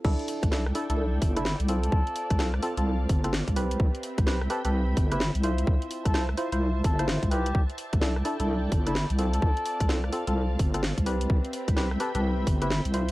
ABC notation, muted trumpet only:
X:1
M:4/4
L:1/16
Q:"Swing 16ths" 1/4=128
K:C
V:1 name="Muted trumpet"
z6 A A z3 E2 z2 A- | A4- A z A A z8 | z6 A A z3 E2 z3 | z3 A2 z4 z A2 z2 G2 |
z6 A A z3 E2 z2 A- | A4- A z A A z8 | z6 A A z3 E2 z3 |]